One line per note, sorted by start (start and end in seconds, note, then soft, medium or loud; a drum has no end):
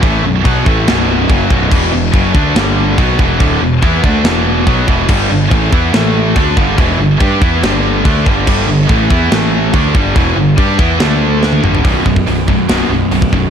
0.03 0.22 A1 loud
0.03 0.23 A2 medium
0.03 0.23 E3 medium
0.03 0.24 A3 loud
0.03 kick loud
0.03 china medium
0.23 0.43 B0 medium
0.23 0.40 B1 medium
0.23 0.40 F#2 medium
0.44 0.65 B1 medium
0.44 0.65 B2 loud
0.44 0.65 F#3 loud
0.44 0.65 B3 loud
0.44 kick loud
0.44 china medium
0.66 0.86 A1 medium
0.66 0.86 A2 medium
0.66 0.86 E3 medium
0.66 0.87 A3 medium
0.66 kick loud
0.87 1.26 B0 loud
0.87 1.28 B1 medium
0.87 1.29 F#2 medium
0.87 1.29 B2 loud
0.87 snare loud
0.87 china medium
1.30 1.49 F#1 medium
1.30 1.50 F#2 medium
1.30 1.50 C#3 loud
1.30 1.50 F#3 medium
1.30 kick loud
1.30 china medium
1.50 1.70 B0 loud
1.50 1.71 B1 medium
1.50 1.71 F#2 medium
1.50 1.70 B2 medium
1.50 kick loud
1.71 1.91 E1 medium
1.71 1.92 E2 medium
1.71 1.92 B2 loud
1.71 1.92 E3 loud
1.71 kick loud
1.71 china medium
1.71 crash loud
1.93 2.12 E1 medium
1.93 2.10 E2 medium
1.93 2.10 B2 medium
2.13 2.33 F#1 medium
2.13 2.34 F#2 loud
2.13 2.34 C#3 loud
2.13 2.35 F#3 loud
2.13 kick loud
2.13 china medium
2.34 2.54 D2 medium
2.34 2.55 D3 medium
2.34 2.55 A3 medium
2.34 2.56 D4 loud
2.34 kick loud
2.55 2.95 G1 loud
2.55 2.98 G2 loud
2.55 2.97 D3 loud
2.55 2.98 G3 loud
2.55 snare loud
2.55 china medium
2.98 3.18 B1 medium
2.98 3.18 B2 medium
2.98 3.19 F#3 medium
2.98 3.19 B3 medium
2.98 kick loud
2.98 china medium
3.18 3.39 E1 loud
3.18 3.38 E2 medium
3.18 3.39 B2 medium
3.18 3.39 E3 medium
3.18 kick medium
3.39 3.60 D1 medium
3.39 3.60 D2 loud
3.39 3.60 A2 medium
3.39 3.60 D3 loud
3.39 kick loud
3.39 china medium
3.60 3.81 E1 medium
3.60 3.78 E2 medium
3.60 3.78 B2 medium
3.81 4.02 E2 loud
3.81 4.02 E3 medium
3.81 4.03 B3 loud
3.81 4.03 E4 loud
3.81 kick loud
3.81 china medium
4.03 4.23 D2 medium
4.03 4.23 D3 medium
4.03 4.24 A3 loud
4.03 4.24 D4 loud
4.03 kick loud
4.23 4.64 E1 medium
4.23 4.65 E2 medium
4.23 4.64 B2 medium
4.23 4.66 E3 loud
4.23 snare loud
4.23 china medium
4.65 4.87 B1 medium
4.65 4.86 B2 medium
4.65 4.87 F#3 loud
4.65 4.87 B3 medium
4.65 kick loud
4.65 china medium
4.87 5.08 E1 medium
4.87 5.08 E2 medium
4.87 5.08 B2 medium
4.87 5.08 E3 medium
4.87 kick medium
5.08 5.29 G1 medium
5.08 5.30 G2 loud
5.08 5.30 D3 medium
5.08 5.30 G3 loud
5.08 kick loud
5.08 china medium
5.08 crash loud
5.30 5.50 G1 medium
5.30 5.47 G2 medium
5.30 5.48 D3 medium
5.51 5.71 A1 loud
5.51 5.71 A2 loud
5.51 5.71 E3 medium
5.51 5.71 A3 loud
5.51 kick loud
5.51 china medium
5.72 5.92 E2 medium
5.72 5.92 E3 medium
5.72 5.93 B3 loud
5.72 5.93 E4 loud
5.72 kick loud
5.93 6.33 A1 medium
5.93 6.35 A2 loud
5.93 6.35 E3 medium
5.93 6.36 A3 loud
5.93 snare loud
5.93 china medium
6.35 6.56 D2 loud
6.35 6.56 D3 medium
6.35 6.57 A3 medium
6.35 6.57 D4 medium
6.35 kick loud
6.35 china medium
6.57 6.76 G1 medium
6.57 6.76 G2 medium
6.57 6.77 D3 medium
6.57 6.78 G3 medium
6.57 kick medium
6.77 6.98 E1 medium
6.77 6.98 E2 medium
6.77 6.98 B2 medium
6.77 6.98 E3 medium
6.77 kick loud
6.77 china medium
6.99 7.19 G1 medium
6.99 7.16 G2 medium
6.99 7.16 D3 medium
7.20 7.40 G2 loud
7.20 7.41 G3 loud
7.20 7.41 D4 loud
7.20 7.42 G4 loud
7.20 kick loud
7.20 china medium
7.41 7.61 E2 loud
7.41 7.62 E3 medium
7.41 7.62 B3 loud
7.41 7.62 E4 loud
7.41 kick loud
7.62 8.02 G1 medium
7.62 8.04 G2 medium
7.62 8.04 D3 medium
7.62 8.04 G3 medium
7.62 snare loud
7.62 china medium
8.05 8.25 D2 medium
8.05 8.25 D3 medium
8.05 8.26 A3 medium
8.05 8.26 D4 medium
8.05 kick loud
8.05 china medium
8.26 8.46 G1 loud
8.26 8.46 G2 medium
8.26 8.46 D3 medium
8.26 8.47 G3 medium
8.26 kick loud
8.47 8.67 G1 medium
8.47 8.68 G2 medium
8.47 8.68 D3 loud
8.47 8.68 G3 loud
8.47 kick loud
8.47 crash loud
8.47 china medium
8.67 8.87 G1 medium
8.67 8.85 G2 medium
8.67 8.86 D3 medium
8.89 9.09 A1 medium
8.89 9.10 A2 loud
8.89 9.10 E3 loud
8.89 9.10 A3 loud
8.89 kick loud
8.89 china medium
9.10 9.30 E2 medium
9.10 9.31 E3 loud
9.10 9.32 B3 loud
9.10 9.32 E4 loud
9.10 kick loud
9.31 9.71 A1 medium
9.31 9.73 A2 medium
9.31 9.73 E3 loud
9.31 9.72 A3 loud
9.31 snare loud
9.31 china medium
9.73 9.93 D2 medium
9.73 9.94 D3 medium
9.73 9.94 A3 medium
9.73 9.94 D4 loud
9.73 kick loud
9.73 china medium
9.94 10.14 G1 medium
9.94 10.15 G2 medium
9.94 10.15 D3 medium
9.94 10.16 G3 medium
9.94 kick loud
10.15 10.35 E1 medium
10.15 10.36 E2 medium
10.15 10.36 B2 loud
10.15 10.37 E3 medium
10.15 kick loud
10.15 china medium
10.36 10.56 G1 medium
10.36 10.54 G2 medium
10.36 10.54 D3 medium
10.57 10.78 G2 loud
10.57 10.78 G3 loud
10.57 10.79 D4 loud
10.57 10.79 G4 loud
10.57 kick loud
10.57 china medium
10.79 10.99 E2 medium
10.79 11.01 E3 medium
10.79 11.01 B3 medium
10.79 11.00 E4 loud
10.79 kick loud
11.00 11.59 D2 loud
11.00 11.63 D3 medium
11.00 11.63 A3 medium
11.00 11.64 D4 loud
11.00 snare loud
11.00 china medium
11.43 snare medium
11.53 high tom medium
11.63 11.83 G1 loud
11.63 11.84 G2 medium
11.63 11.85 D3 medium
11.63 11.85 G3 loud
11.63 mid tom medium
11.75 floor tom medium
11.85 11.97 B0 medium
11.85 12.05 B1 medium
11.85 12.05 F#2 medium
11.85 12.05 B2 medium
11.85 kick loud
11.85 open hi-hat medium
12.05 12.18 B0 medium
12.05 12.25 B1 medium
12.05 12.25 F#2 medium
12.05 kick medium
12.16 kick medium
12.27 12.53 B0 medium
12.27 12.46 B1 medium
12.27 12.47 F#2 medium
12.27 12.49 B2 medium
12.27 open hi-hat soft
12.48 12.68 B1 medium
12.48 12.68 F#2 medium
12.48 12.69 B2 medium
12.48 kick medium
12.69 12.82 B0 medium
12.69 12.89 B1 medium
12.69 12.90 F#2 medium
12.69 12.90 B2 loud
12.69 snare loud
12.69 open hi-hat medium
12.90 13.03 B0 medium
12.90 13.10 B1 medium
12.90 13.10 F#2 medium
13.11 13.24 B0 medium
13.11 13.30 B1 medium
13.11 13.31 F#2 medium
13.11 13.32 B2 medium
13.11 open hi-hat medium
13.22 kick medium
13.32 13.45 B0 medium
13.32 13.50 B1 medium
13.32 13.50 F#2 medium
13.32 13.50 B2 medium
13.32 kick medium